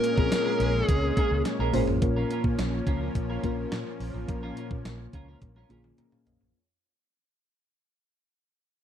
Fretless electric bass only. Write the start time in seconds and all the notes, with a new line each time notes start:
0.17 A#1
0.60 A#1
0.88 C#2
1.31 C#2
1.59 A#1
1.74 G#1
1.87 A1
2.02 A#1
2.44 A#2
2.58 A#1
2.87 C#2
3.15 A#1
3.44 A#1
3.72 A#2
4.00 A#1
4.14 A1
4.28 A#1
4.71 A#2
4.85 A#1
5.13 C#2
5.42 A#1
5.70 A#1
5.98 A#2
6.26 A#1
6.41 A1